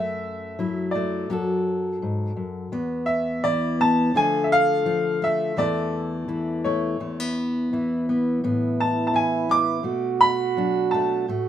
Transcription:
0.00 1.26 F#2 medium
0.00 0.94 A3 medium
0.00 0.87 E5 medium
0.59 1.25 F#3 medium
0.59 1.26 E4 medium
0.91 1.30 A3 medium
0.91 1.60 D5 medium
1.30 2.01 F#2 medium
1.30 2.68 F#3 medium
1.30 2.69 F#4 medium
1.30 2.70 A4 medium
2.02 2.36 G#2 medium
2.36 2.72 F#2 medium
2.72 4.15 E2 medium
2.72 3.79 B3 medium
3.06 3.44 E5 medium
3.44 4.15 E3 medium
3.44 4.11 E4 medium
3.44 3.81 D5 medium
3.81 4.11 B3 medium
3.81 4.17 A5 medium
4.14 5.53 D3 medium
4.14 4.84 F3 medium
4.14 5.21 A3 medium
4.14 4.85 F4 medium
4.14 5.54 A4 medium
4.14 4.46 G#5 medium
4.44 4.51 E5 medium
4.52 5.25 F5 loud
4.86 5.53 F3 medium
4.86 5.54 F4 medium
5.22 5.57 A3 medium
5.22 5.60 E5 medium
5.56 6.99 E2 medium
5.56 6.27 E3 medium
5.56 6.64 A3 medium
5.56 6.27 E4 medium
5.56 6.98 A4 medium
5.56 6.69 D5 medium
6.28 7.72 E3 medium
6.28 6.96 E4 medium
6.64 6.99 A3 medium
6.64 7.32 C#5 medium
7.00 8.43 E2 medium
7.00 7.20 A3 medium
7.20 8.08 B3 soft
7.73 9.12 E3 medium
7.73 8.40 E4 medium
8.09 8.40 B3 soft
8.44 9.83 A2 medium
8.44 9.48 B3 medium
8.44 9.86 E4 medium
8.80 9.06 A5 medium
9.07 9.15 A5 medium
9.13 9.86 E3 medium
9.13 9.82 E4 medium
9.13 9.53 G#5 medium
9.49 9.82 B3 medium
9.49 10.19 D6 loud
9.83 11.28 B2 medium
9.83 10.93 A3 medium
9.83 11.28 F#4 loud
10.21 10.95 B5 medium
10.57 11.25 F#3 medium
10.57 11.25 D4 medium
10.91 11.28 A3 medium
10.91 11.26 A5 medium
11.28 11.48 A2 medium
11.28 11.48 A3 medium
11.28 11.48 F#4 loud

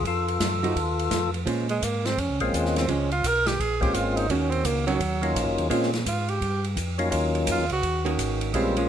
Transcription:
0.05 0.39 F2 medium
0.05 1.31 F4 medium
0.05 1.31 A4 loud
0.05 kick soft
0.05 ride medium
0.28 ride soft
0.40 0.74 F#2 medium
0.40 kick soft
0.40 snare medium
0.40 hi-hat pedal medium
0.40 ride medium
0.63 0.74 F3 medium
0.63 0.75 A3 medium
0.63 0.74 D#4 medium
0.63 0.75 F#4 medium
0.63 ride soft
0.76 1.10 D#2 medium
0.76 kick soft
0.76 ride medium
0.99 ride soft
1.11 1.45 F2 medium
1.11 kick soft
1.11 snare medium
1.11 hi-hat pedal medium
1.11 ride medium
1.34 ride soft
1.46 1.81 A#2 medium
1.46 1.66 F3 medium
1.46 1.67 G#3 medium
1.46 1.67 C#4 medium
1.46 kick soft
1.46 ride medium
1.69 1.85 G#3 medium
1.69 ride soft
1.82 2.16 G#2 medium
1.82 2.07 A#3 medium
1.82 kick soft
1.82 hi-hat pedal medium
1.82 ride medium
2.05 2.21 C4 loud
2.05 snare soft
2.05 ride soft
2.18 2.29 F2 medium
2.18 2.41 C#4 medium
2.18 kick soft
2.18 ride medium
2.29 2.41 C#2 soft
2.40 2.51 A#1 medium
2.40 2.57 F3 medium
2.40 2.86 G#3 medium
2.40 2.86 A#3 medium
2.40 2.86 C4 medium
2.40 2.86 C#4 medium
2.40 2.86 F4 medium
2.40 ride soft
2.53 2.87 D#2 medium
2.53 2.79 G#3 medium
2.53 kick soft
2.53 hi-hat pedal medium
2.53 ride medium
2.65 snare soft
2.76 2.92 C4 medium
2.76 snare soft
2.76 ride soft
2.88 3.22 C#2 medium
2.88 3.08 F3 medium
2.88 3.09 G#3 medium
2.88 3.09 C#4 medium
2.88 3.12 C#4 medium
2.88 kick soft
2.88 ride medium
3.11 3.29 F4 medium
3.11 ride soft
3.24 3.58 B1 medium
3.24 3.48 A#4 loud
3.24 kick soft
3.24 hi-hat pedal medium
3.24 ride medium
3.46 3.62 G4 loud
3.46 snare medium
3.46 ride soft
3.60 3.93 A#1 medium
3.60 3.82 G#4 loud
3.60 kick soft
3.60 ride medium
3.81 4.27 G#3 medium
3.81 4.27 A#3 medium
3.81 4.27 C4 medium
3.81 4.27 C#4 medium
3.81 4.27 F4 medium
3.81 3.96 G4 medium
3.81 kick soft
3.81 ride soft
3.94 4.29 G#1 medium
3.94 4.18 F4 medium
3.94 kick soft
3.94 hi-hat pedal medium
3.94 ride medium
4.16 4.32 D#4 medium
4.16 ride soft
4.30 4.64 D#2 medium
4.30 4.83 D#3 medium
4.30 4.83 A#3 medium
4.30 4.52 C#4 medium
4.30 4.84 C#4 medium
4.30 4.84 F#4 medium
4.30 kick soft
4.30 ride medium
4.51 4.66 C4 medium
4.51 ride soft
4.65 4.99 C#2 medium
4.65 4.86 A#3 medium
4.65 kick soft
4.65 hi-hat pedal medium
4.65 ride medium
4.87 4.99 D#3 medium
4.87 5.67 F#3 medium
4.87 4.99 A#3 medium
4.87 4.99 C#4 medium
4.87 4.99 F#4 medium
4.87 ride soft
5.00 5.35 D#2 medium
5.00 kick soft
5.00 ride medium
5.21 5.68 F#3 medium
5.21 5.68 A#3 medium
5.21 5.68 C#4 medium
5.21 5.69 D#4 medium
5.21 5.69 F4 medium
5.21 ride soft
5.35 5.47 A#1 medium
5.35 kick soft
5.35 hi-hat pedal medium
5.35 ride medium
5.46 5.59 F#1 medium
5.58 5.70 D#2 medium
5.58 ride soft
5.70 6.05 A#2 medium
5.70 5.91 G#3 medium
5.70 5.91 A#3 medium
5.70 5.91 C4 medium
5.70 5.91 C#4 medium
5.70 5.91 F4 medium
5.70 kick soft
5.70 ride medium
5.83 snare soft
5.93 snare soft
5.93 ride soft
6.06 6.40 G#2 medium
6.06 6.31 F4 medium
6.06 kick soft
6.06 hi-hat pedal medium
6.06 ride medium
6.28 6.65 G4 loud
6.28 ride soft
6.41 6.76 G2 medium
6.41 kick soft
6.41 ride medium
6.64 ride soft
6.77 7.11 F2 medium
6.77 kick soft
6.77 hi-hat pedal medium
6.77 ride medium
6.98 7.09 F#3 medium
6.98 7.10 A#3 medium
6.98 7.09 C#4 medium
6.98 7.09 D#4 medium
6.98 7.10 F4 medium
6.98 ride soft
7.10 7.47 D#2 medium
7.10 7.65 F#3 medium
7.10 7.65 A#3 medium
7.10 7.65 C#4 medium
7.10 7.65 D#4 medium
7.10 7.65 F4 medium
7.10 kick soft
7.10 ride medium
7.35 ride soft
7.47 7.59 F2 medium
7.47 kick soft
7.47 hi-hat pedal medium
7.47 ride medium
7.51 7.71 F4 medium
7.58 7.71 D#2 medium
7.70 7.82 C#2 medium
7.70 8.05 F#4 loud
7.70 ride soft
7.83 8.18 D#2 medium
7.83 kick soft
7.83 ride medium
8.05 8.51 D#3 medium
8.05 8.51 A#3 medium
8.05 8.52 C#4 medium
8.05 8.52 F#4 medium
8.05 ride soft
8.19 8.53 G#1 medium
8.19 kick soft
8.19 hi-hat pedal medium
8.19 ride medium
8.41 ride medium
8.54 8.88 A#1 medium
8.54 8.75 E3 medium
8.54 8.75 G3 medium
8.54 8.89 G#3 medium
8.54 8.89 A#3 medium
8.54 8.75 C4 medium
8.54 8.89 C#4 medium
8.54 8.89 F4 medium
8.54 kick soft
8.54 ride medium
8.77 8.89 F3 medium
8.77 8.89 G#3 medium
8.77 8.89 C#4 medium
8.77 ride medium

